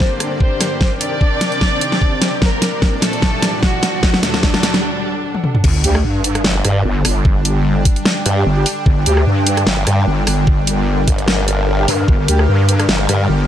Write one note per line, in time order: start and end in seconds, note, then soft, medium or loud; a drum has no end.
0.00 0.79 G2 medium
0.00 0.79 D3 medium
0.00 0.79 A#3 medium
0.00 0.33 C4 medium
0.00 0.81 D4 medium
0.00 2.39 G4 medium
0.00 1.38 A#4 medium
0.00 0.33 C5 medium
0.00 0.79 D5 medium
0.00 4.03 D5 medium
0.00 kick loud
0.00 snare medium
0.00 riser medium
0.20 cross-stick soft
0.20 closed hi-hat medium
0.40 0.93 C4 medium
0.40 0.93 C5 medium
0.40 kick medium
0.61 cross-stick soft
0.61 snare medium
0.61 closed hi-hat medium
0.81 2.40 C3 medium
0.81 2.40 D#3 medium
0.81 2.40 C4 medium
0.81 2.42 C4 medium
0.81 2.40 G5 medium
0.81 kick loud
0.81 snare medium
1.01 2.34 D4 medium
1.01 2.34 D5 loud
1.01 closed hi-hat medium
1.21 3.07 C5 medium
1.21 kick loud
1.41 snare medium
1.41 closed hi-hat medium
1.52 closed hi-hat soft
1.61 kick medium
1.61 snare medium
1.81 closed hi-hat medium
1.92 snare medium
2.02 kick medium
2.22 snare medium
2.22 closed hi-hat medium
2.42 4.03 A#2 medium
2.42 4.01 A#2 medium
2.42 4.01 G3 medium
2.42 2.95 A#3 medium
2.42 4.01 D4 medium
2.42 2.95 A#4 loud
2.42 4.01 D5 medium
2.42 kick loud
2.42 snare medium
2.55 4.83 D4 medium
2.62 snare medium
2.62 closed hi-hat medium
2.82 kick loud
2.82 snare medium
3.02 3.55 A3 medium
3.02 3.55 A4 medium
3.02 snare medium
3.02 closed hi-hat medium
3.13 closed hi-hat soft
3.22 kick medium
3.22 snare medium
3.42 snare medium
3.42 closed hi-hat medium
3.63 4.16 F#4 loud
3.63 kick medium
3.63 snare medium
3.83 snare medium
3.83 closed hi-hat medium
4.03 4.83 D2 medium
4.03 4.83 D3 medium
4.03 4.83 A3 medium
4.03 4.83 F#4 medium
4.03 4.83 A4 medium
4.03 kick loud
4.03 snare medium
4.14 snare medium
4.23 5.57 D4 loud
4.23 snare loud
4.23 closed hi-hat medium
4.34 snare medium
4.43 kick loud
4.43 snare medium
4.54 snare medium
4.63 snare loud
4.63 closed hi-hat medium
4.74 snare medium
4.74 closed hi-hat soft
5.34 high tom soft
5.44 mid tom medium
5.55 mid tom medium
5.64 5.83 G1 loud
5.64 13.47 D3 medium
5.64 13.47 G3 medium
5.64 12.06 D4 medium
5.64 kick loud
5.64 crash loud
5.64 sub drop medium
5.84 6.03 D2 loud
5.84 5.98 G3 loud
5.84 5.98 D4 medium
5.84 5.98 G4 loud
5.84 closed hi-hat medium
5.95 cross-stick medium
6.04 6.43 G2 medium
6.09 13.47 G3 medium
6.24 closed hi-hat medium
6.35 cross-stick medium
6.35 closed hi-hat soft
6.44 6.63 G1 loud
6.44 snare loud
6.65 6.83 G2 loud
6.65 cross-stick medium
6.65 closed hi-hat medium
6.83 7.03 G1 loud
6.83 10.07 G5 medium
7.05 7.84 G1 loud
7.05 cross-stick medium
7.05 open hi-hat loud
7.25 kick loud
7.45 7.59 G3 medium
7.45 7.59 D4 medium
7.45 7.59 G4 medium
7.45 closed hi-hat medium
7.85 kick loud
7.85 closed hi-hat medium
7.96 closed hi-hat soft
8.05 snare loud
8.26 8.44 G2 loud
8.26 closed hi-hat medium
8.37 8.44 G3 medium
8.37 8.44 D4 medium
8.37 8.44 G4 medium
8.46 8.65 G1 loud
8.57 8.64 G3 loud
8.57 8.64 D4 medium
8.57 8.64 G4 loud
8.66 open hi-hat loud
8.86 9.05 G1 loud
8.86 kick loud
9.06 9.25 D2 loud
9.06 9.20 G3 loud
9.06 9.20 D4 medium
9.06 9.20 G4 loud
9.06 closed hi-hat medium
9.17 cross-stick medium
9.26 9.65 G2 medium
9.47 closed hi-hat medium
9.57 cross-stick medium
9.57 closed hi-hat soft
9.67 9.85 G1 loud
9.67 snare loud
9.87 10.05 G2 medium
9.87 cross-stick medium
9.87 closed hi-hat medium
10.05 10.26 G1 loud
10.05 13.30 A#4 medium
10.27 11.06 G1 medium
10.27 cross-stick soft
10.27 open hi-hat medium
10.47 kick loud
10.67 closed hi-hat medium
11.08 11.87 G1 loud
11.08 kick loud
11.08 closed hi-hat medium
11.18 closed hi-hat soft
11.28 snare loud
11.48 closed hi-hat medium
11.79 11.86 G3 loud
11.79 11.87 D4 medium
11.79 11.87 G4 loud
11.88 12.07 G2 loud
11.88 open hi-hat medium
12.08 12.27 G1 loud
12.08 13.47 G4 medium
12.08 kick loud
12.28 12.47 D2 loud
12.28 12.42 G3 medium
12.28 12.42 D4 medium
12.28 12.42 G4 loud
12.28 closed hi-hat medium
12.39 cross-stick medium
12.49 12.87 G2 medium
12.69 closed hi-hat medium
12.80 cross-stick medium
12.80 closed hi-hat soft
12.89 13.07 G1 loud
12.89 snare loud
13.09 13.28 G2 loud
13.09 cross-stick medium
13.09 closed hi-hat medium
13.28 13.47 G1 loud
13.28 13.47 G5 medium